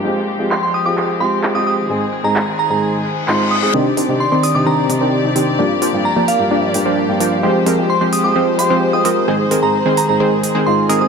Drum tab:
HH |-o-o-o-o|-o-o-o-o|-o-o-o-o|-o-o-o-o|
CP |--x-x-x-|--x---x-|--------|--------|

HH |-o-o-o-o|-o-o-o-o|
CP |--------|--------|